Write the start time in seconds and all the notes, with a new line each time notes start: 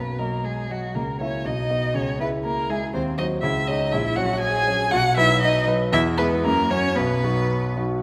Already playing: B1 B4
0.18 F#3 A#3 F#4 A#4 D#5
0.44 G#3 G#4
0.69 F#3 F#4 D#5
0.95 C#2 A#3 A#4
1.20 A#3 C#4 E4 C#5 E5
1.45 B1 D#4 D#5
1.70 B3 F#4 D#5
1.94 C#2 C#4 C#5
2.19 G#3 B3 E4 B4 E5
2.44 A#3 A#4
2.69 G#3 E4 G#4 E5
2.94 D#2 C4 C5
3.18 F#3 D#4 F#4 C5 D#5
3.42 C#2 E4 E5
3.67 G#3 C#4 D#4 C#5 D#5
3.92 A#1 E4 E5
4.16 F#3 C#4 F#4 C#5 F#5
4.40 G#4 G#5
4.66 F#3 C#4 C#5
4.91 B1 F#4 F#5
5.17 F#3 D#4 E4 B4 E5
5.41 D#4 D#5
5.67 F#3 D#4 B4
5.92 E2 E4 E5
6.18 G#3 B3 E4 B4
6.44 F#2 A#3 A#4
6.70 F#3 C#4 F#4 C#5
6.96 B1 B3 B4
7.23 F#3 D#4 F#4
7.77 F#3 D#4 F#4